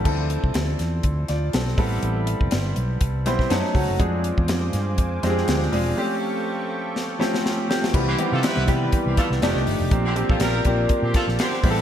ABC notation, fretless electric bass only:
X:1
M:4/4
L:1/16
Q:"Swing 16ths" 1/4=122
K:Am
V:1 name="Fretless electric bass" clef=bass
D,,3 C,, D,,2 E,,2 D,,2 D,,2 B,,,2 A,,,2 | A,,,3 F,,, G,,,2 B,,,2 C,,2 B,,,2 ^F,, z ^C,, ^F,,, | F,,3 E,, F,,2 G,,2 F,,2 F,,2 D,,2 E,,,2 | z16 |
C,,2 z C, z C,, C,2 z C,, z C,, F,,, C,, G,,, F,,, | _B,,,3 A,,, B,,,2 B,,,2 z _B,, z B,,, z2 A,,,2 |]